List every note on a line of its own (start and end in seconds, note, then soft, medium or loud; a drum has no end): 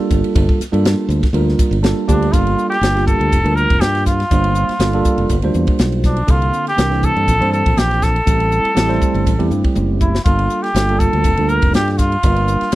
0.00 0.59 G3 medium
0.00 0.59 A#3 medium
0.00 0.60 D4 medium
0.00 0.60 F4 medium
0.00 0.60 A4 medium
0.10 0.22 G1 medium
0.10 kick medium
0.10 hi-hat pedal medium
0.10 ride medium
0.24 ride medium
0.36 0.46 G1 medium
0.36 kick loud
0.36 ride medium
0.49 kick medium
0.60 muted fingered electric bass stroke soft
0.60 snare soft
0.60 hi-hat pedal medium
0.60 ride medium
0.72 0.94 G2 medium
0.72 1.25 G3 medium
0.72 1.25 A#3 medium
0.72 1.25 D4 medium
0.72 1.25 F4 medium
0.72 1.26 A4 medium
0.72 ride medium
0.85 snare loud
0.85 ride medium
1.09 1.20 D2 medium
1.09 hi-hat pedal medium
1.09 ride medium
1.23 kick medium
1.23 snare soft
1.23 ride medium
1.33 1.54 D2 medium
1.33 1.76 G3 medium
1.33 1.76 A#3 medium
1.33 1.77 D4 medium
1.33 1.77 F4 medium
1.33 1.77 A#4 medium
1.33 ride medium
1.48 snare soft
1.59 kick medium
1.59 hi-hat pedal medium
1.59 ride medium
1.71 1.92 G1 medium
1.71 ride medium
1.82 2.04 G3 medium
1.82 2.04 A#3 medium
1.82 2.05 D4 medium
1.82 2.05 F4 medium
1.82 2.05 A4 medium
1.82 2.29 A5 medium
1.82 snare loud
1.82 ride medium
2.07 2.29 D2 medium
2.07 2.29 G3 medium
2.07 2.29 A#3 medium
2.07 2.34 D4 medium
2.07 2.29 D4 medium
2.07 2.29 F4 medium
2.07 2.30 G4 medium
2.07 kick medium
2.07 hi-hat pedal medium
2.07 ride medium
2.22 ride medium
2.32 2.54 G1 medium
2.32 2.75 G3 medium
2.32 2.75 A#3 medium
2.32 2.75 D4 medium
2.32 2.69 F4 medium
2.32 2.76 F4 medium
2.32 2.76 A4 medium
2.32 kick loud
2.32 hi-hat pedal medium
2.32 ride medium
2.47 ride medium
2.58 hi-hat pedal medium
2.70 3.04 G4 medium
2.70 snare soft
2.70 ride medium
2.81 3.14 G1 medium
2.81 2.93 G3 medium
2.81 2.93 A#3 medium
2.81 2.93 D4 medium
2.81 2.94 F4 medium
2.81 2.94 A#4 medium
2.81 snare loud
2.81 hi-hat pedal medium
2.81 ride medium
2.95 3.37 G3 medium
2.95 3.37 A#3 medium
2.95 3.37 D4 medium
2.95 3.37 F4 medium
2.95 3.37 G4 medium
2.95 snare soft
2.95 ride medium
3.07 3.57 A4 medium
3.07 kick medium
3.07 hi-hat pedal medium
3.20 3.30 D2 medium
3.20 ride medium
3.32 3.43 F1 medium
3.32 kick medium
3.32 hi-hat pedal medium
3.32 ride medium
3.44 3.65 D2 medium
3.44 4.19 G3 medium
3.44 4.19 A#3 medium
3.44 4.19 D4 medium
3.44 4.19 F4 medium
3.44 4.19 A#4 medium
3.44 ride medium
3.56 3.82 A#4 medium
3.56 hi-hat pedal medium
3.70 3.80 F1 medium
3.70 kick medium
3.70 ride medium
3.81 4.23 G2 medium
3.81 4.06 G4 medium
3.81 snare loud
3.81 hi-hat pedal medium
3.81 ride medium
3.95 snare soft
3.95 ride medium
4.06 5.51 F4 medium
4.06 kick medium
4.06 snare soft
4.06 hi-hat pedal medium
4.20 snare soft
4.20 ride medium
4.30 4.63 G1 loud
4.30 4.74 G3 medium
4.30 4.74 A#3 medium
4.30 4.74 D4 medium
4.30 4.74 F4 medium
4.30 4.74 C5 medium
4.30 kick loud
4.30 hi-hat pedal medium
4.30 ride medium
4.44 ride medium
4.55 hi-hat pedal medium
4.69 snare soft
4.69 ride medium
4.79 5.01 G1 medium
4.79 4.91 G3 medium
4.79 4.91 A#3 medium
4.79 4.92 D4 medium
4.79 4.92 F4 medium
4.79 4.92 A4 medium
4.79 snare loud
4.79 hi-hat pedal medium
4.79 ride medium
4.93 5.36 G3 medium
4.93 5.36 A#3 medium
4.93 5.36 D4 medium
4.93 5.36 F4 medium
4.93 5.36 A4 medium
4.93 ride medium
5.05 kick medium
5.05 hi-hat pedal medium
5.18 5.28 F1 medium
5.18 ride soft
5.29 5.41 G1 medium
5.29 kick medium
5.29 hi-hat pedal medium
5.29 ride medium
5.42 5.53 D2 medium
5.42 6.17 G3 medium
5.42 6.18 A#3 medium
5.42 6.18 D4 medium
5.42 6.18 F4 medium
5.42 6.18 C5 medium
5.42 ride medium
5.54 5.66 E2 medium
5.54 hi-hat pedal medium
5.67 kick medium
5.67 ride medium
5.79 6.21 B1 medium
5.79 snare medium
5.79 hi-hat pedal medium
5.79 ride medium
5.92 ride medium
6.03 6.32 D4 medium
6.03 kick medium
6.03 snare soft
6.03 hi-hat pedal medium
6.17 ride medium
6.27 6.50 C2 medium
6.27 6.71 D3 medium
6.27 6.71 A#3 medium
6.27 6.71 C4 medium
6.27 6.71 D4 medium
6.27 6.68 F4 medium
6.27 6.71 A4 medium
6.27 kick loud
6.27 hi-hat pedal medium
6.27 ride medium
6.42 ride medium
6.53 hi-hat pedal medium
6.67 7.06 G4 medium
6.67 snare soft
6.67 ride medium
6.76 7.10 C2 medium
6.76 6.88 E3 medium
6.76 6.89 A#3 medium
6.76 6.89 C4 medium
6.76 6.89 D4 medium
6.76 6.90 A#4 medium
6.76 snare loud
6.76 hi-hat pedal medium
6.76 ride medium
6.90 7.33 E3 medium
6.90 7.33 A#3 medium
6.90 7.33 C4 medium
6.90 7.33 D4 medium
6.90 7.33 A4 medium
6.90 snare soft
6.90 ride soft
7.03 7.53 A4 loud
7.03 kick medium
7.03 hi-hat pedal medium
7.16 7.26 G2 medium
7.16 ride medium
7.28 7.39 A#1 medium
7.28 kick medium
7.28 hi-hat pedal medium
7.28 ride medium
7.40 7.62 G2 medium
7.40 8.15 E3 medium
7.40 8.15 A#3 medium
7.40 8.15 C4 medium
7.40 8.15 D4 medium
7.40 8.15 C5 medium
7.40 ride medium
7.53 7.80 A4 medium
7.53 hi-hat pedal medium
7.66 7.76 A#1 medium
7.66 kick medium
7.66 ride medium
7.77 8.19 A#1 medium
7.77 8.05 G4 medium
7.77 snare medium
7.77 hi-hat pedal medium
7.77 ride medium
7.91 snare soft
7.91 ride medium
8.02 9.51 A4 medium
8.02 kick medium
8.02 snare soft
8.02 hi-hat pedal medium
8.16 ride medium
8.26 8.59 A1 medium
8.26 8.69 G3 medium
8.26 8.70 A3 medium
8.26 8.70 C4 medium
8.26 8.70 E4 medium
8.26 8.70 A4 medium
8.26 kick medium
8.26 hi-hat pedal medium
8.26 ride medium
8.40 ride medium
8.52 hi-hat pedal medium
8.65 muted fingered electric bass stroke soft
8.65 ride medium
8.74 8.98 A1 medium
8.74 8.87 G3 medium
8.74 8.87 A3 medium
8.74 8.87 C4 medium
8.74 8.87 E4 medium
8.74 8.87 G4 medium
8.74 snare loud
8.74 hi-hat pedal medium
8.74 ride medium
8.88 9.31 G3 medium
8.88 9.31 A3 medium
8.88 9.31 C4 medium
8.88 9.32 E4 medium
8.88 9.32 C5 loud
8.88 ride soft
9.02 kick medium
9.02 hi-hat pedal medium
9.14 9.24 G1 medium
9.14 ride medium
9.27 9.38 A1 medium
9.27 kick medium
9.27 hi-hat pedal medium
9.27 ride medium
9.38 9.49 E2 medium
9.38 10.13 G3 medium
9.38 10.13 A3 medium
9.38 10.14 C4 medium
9.38 10.14 E4 medium
9.38 10.14 G4 medium
9.38 ride medium
9.51 9.62 G2 medium
9.51 hi-hat pedal medium
9.64 kick medium
9.64 ride medium
9.76 10.18 F#1 medium
9.76 hi-hat pedal medium
9.76 high tom soft
10.01 10.24 E4 medium
10.01 kick medium
10.01 hi-hat pedal medium
10.15 snare medium
10.24 10.46 G1 medium
10.24 10.68 G3 medium
10.24 10.68 A#3 medium
10.24 10.68 D4 medium
10.24 10.64 F4 medium
10.24 10.68 F4 medium
10.24 10.69 A4 medium
10.24 kick loud
10.24 hi-hat pedal medium
10.24 ride medium
10.39 ride medium
10.50 hi-hat pedal medium
10.63 11.01 G4 medium
10.63 snare soft
10.63 ride medium
10.74 11.07 G1 medium
10.74 10.86 G3 medium
10.74 10.86 A#3 medium
10.74 10.86 D4 medium
10.74 10.87 F4 medium
10.74 10.87 A4 medium
10.74 snare loud
10.74 hi-hat pedal medium
10.74 ride medium
10.89 11.30 G3 medium
10.89 11.30 A#3 medium
10.89 11.31 D4 medium
10.89 11.31 F4 medium
10.89 11.31 A4 medium
10.89 ride medium
10.99 11.51 A4 medium
10.99 kick medium
10.99 hi-hat pedal medium
11.13 11.23 D2 medium
11.13 ride soft
11.24 11.36 F1 medium
11.24 kick medium
11.24 hi-hat pedal medium
11.24 ride medium
11.37 11.58 D2 medium
11.37 12.12 G3 medium
11.37 12.12 A#3 medium
11.37 12.12 D4 medium
11.37 12.12 F4 medium
11.37 12.12 A4 medium
11.37 ride medium
11.49 11.74 A#4 medium
11.49 hi-hat pedal medium
11.62 11.72 F1 medium
11.62 kick medium
11.62 ride medium
11.73 12.15 G2 medium
11.73 11.92 G4 medium
11.73 snare medium
11.73 hi-hat pedal medium
11.73 ride medium
11.88 snare soft
11.88 ride medium
11.92 12.00 G4 medium
11.98 12.75 F4 medium
11.98 kick medium
11.98 snare soft
11.98 hi-hat pedal medium
12.12 ride medium
12.23 12.56 G1 loud
12.23 12.66 G3 medium
12.23 12.67 A#3 medium
12.23 12.67 D4 medium
12.23 12.67 F4 medium
12.23 12.67 A#4 medium
12.23 kick loud
12.23 hi-hat pedal medium
12.23 ride medium
12.36 ride medium
12.48 hi-hat pedal medium
12.61 muted fingered electric bass stroke soft
12.61 snare soft
12.61 ride medium
12.72 hi-hat pedal medium
12.72 ride medium